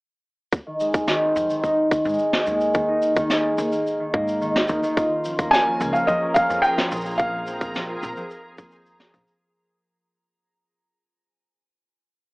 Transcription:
0.53 kick, shaker
0.67 harp D#3
0.80 harp G#3, shaker
0.94 kick, shaker
1.08 harp D#3, snare, shaker
1.22 harp C4
1.36 upright bass F2, shaker
1.50 harp D#3, shaker
1.64 harp D#4, kick, shaker
1.91 harp D#3, kick, shaker
2.05 upright bass G#2, harp G#3, shaker
2.09 shaker
2.14 shaker
2.19 shaker
2.33 harp D#3, snare
2.47 upright bass D#2, harp G#3, shaker
2.60 shaker
2.74 harp D#3, kick, shaker
2.88 harp D#4
3.02 shaker
3.16 harp D#3, kick, shaker
3.30 harp G#4, snare, shaker
3.58 upright bass D#2, harp D#3, shaker
3.72 harp A#3, shaker
3.87 shaker
4.00 harp D#3
4.13 upright bass G#2, harp A#3, kick
4.28 shaker
4.41 harp D#3, shaker
4.55 harp D#4, snare
4.68 upright bass D#2, kick, shaker
4.83 harp D#3, shaker
4.97 analog synth pad F3 C#4 A#4, harp F4, synth texture G#4 A#5, kick, shaker
5.25 harp F3, shaker
5.39 harp A#3, kick, shaker
5.51 felt piano G#5, snare, shaker
5.67 harp F3
5.80 upright bass C#2, harp A#3, shaker
5.93 felt piano F5, shaker
6.07 harp F3, felt piano D#5, kick, shaker
6.22 harp C#4
6.34 felt piano F5, kick, shaker
6.50 upright bass F2, harp F3, shaker
6.62 harp F4, felt piano G5, shaker
6.78 snare
6.92 upright bass A#1, harp F3, shaker
6.96 shaker
7.01 shaker
7.05 harp A#3, shaker
7.10 shaker
7.15 felt piano F5, shaker
7.19 analog synth pad C4 A#4, kick, shaker
7.33 harp F3
7.47 harp C4, shaker
7.61 kick, shaker
7.74 harp F3, snare, shaker
7.89 harp F4
8.03 upright bass A#1, shaker
8.17 harp F3, shaker
8.31 harp A#4, shaker
8.58 upright bass D#2, harp F3, kick, shaker
8.71 harp C5, shaker
8.86 shaker
9.00 harp A#4, snare
9.14 upright bass A#1, harp F3, kick, shaker
9.27 shaker

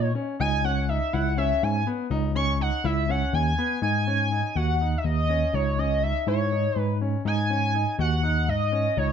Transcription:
Already playing: tine electric piano A#2, analog synth lead D#5
0.15 grand piano C#4
0.40 tine electric piano C#2, grand piano D#4, analog synth lead G#5
0.64 grand piano C#4, analog synth lead F#5
0.89 grand piano D#4, analog synth lead E5
1.13 tine electric piano C#2, grand piano E4, analog synth lead F#5
1.38 grand piano C#4, analog synth lead E5
1.63 tine electric piano G#2, analog synth lead G#5
1.87 grand piano B3
2.11 tine electric piano C#2, grand piano D#4
2.35 grand piano C#4, analog synth lead C#6
2.60 grand piano D#4, analog synth lead F#5
2.84 tine electric piano C#2, grand piano E4, analog synth lead E5
3.09 grand piano C#4, analog synth lead F#5
3.33 tine electric piano D#2, analog synth lead G#5
3.58 grand piano B3
3.82 tine electric piano G#2, grand piano D#4, analog synth lead G#5
4.07 grand piano C#4
4.32 grand piano D#4
4.56 tine electric piano D#2, grand piano F#4, analog synth lead F#5
4.81 grand piano D#4
4.98 analog synth lead E5
5.04 tine electric piano D#2, analog synth lead D#5
5.30 grand piano C#4
5.54 tine electric piano C#2, grand piano D#4, analog synth lead C#5
5.79 grand piano C#4, analog synth lead D#5
6.03 grand piano D#4, analog synth lead E5
6.27 tine electric piano G#2, grand piano E4, analog synth lead C#5
6.52 grand piano D#4
6.76 tine electric piano G#2, analog synth lead B4
7.01 grand piano C#4
7.25 tine electric piano G#2, grand piano D#4, analog synth lead G#5
7.50 grand piano C#4
7.75 grand piano D#4
7.99 tine electric piano D#2, grand piano F#4, analog synth lead F#5
8.23 grand piano D#4
8.48 tine electric piano G#2, analog synth lead D#5
8.72 grand piano C#4
8.97 tine electric piano C#2, grand piano D#4, analog synth lead C#5

